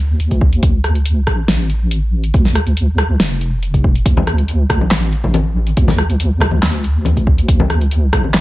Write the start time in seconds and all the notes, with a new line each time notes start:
Already playing: D2
0.20 D2, closed hi-hat
0.31 kick, closed hi-hat
0.41 kick
0.53 closed hi-hat
0.63 D2, kick, closed hi-hat
0.84 cross-stick, closed hi-hat
0.95 closed hi-hat
1.06 closed hi-hat
1.27 kick, cross-stick, closed hi-hat
1.48 A1, snare, closed hi-hat
1.70 closed hi-hat
1.91 closed hi-hat
2.24 closed hi-hat
2.34 D2, kick, closed hi-hat
2.45 snare
2.55 cross-stick, closed hi-hat
2.67 closed hi-hat
2.77 closed hi-hat
2.98 cross-stick, closed hi-hat
3.20 F1, snare, closed hi-hat
3.41 closed hi-hat
3.63 closed hi-hat
3.74 kick, closed hi-hat
3.84 kick
3.96 closed hi-hat
4.06 D2, kick, closed hi-hat
4.17 high conga, low conga
4.27 cross-stick, closed hi-hat
4.38 closed hi-hat
4.48 closed hi-hat
4.65 C#2
4.70 kick, cross-stick, closed hi-hat, low conga
4.81 high conga
4.91 A1, snare, clap, closed hi-hat
5.13 closed hi-hat
5.24 low conga
5.34 closed hi-hat, high conga
5.67 closed hi-hat
5.77 D2, kick, closed hi-hat
5.88 snare, high conga, low conga
5.98 cross-stick, closed hi-hat
6.10 closed hi-hat
6.20 closed hi-hat
6.40 cross-stick, closed hi-hat, low conga
6.51 high conga
6.63 D2, snare, clap, closed hi-hat
6.84 closed hi-hat
7.05 D2, closed hi-hat, high conga
7.17 kick, closed hi-hat
7.27 kick
7.38 closed hi-hat
7.48 D2, kick, closed hi-hat
7.60 high conga, low conga
7.70 cross-stick, closed hi-hat
7.81 closed hi-hat
7.91 closed hi-hat
8.13 kick, cross-stick, closed hi-hat, low conga
8.24 high conga
8.34 A1, snare, clap, closed hi-hat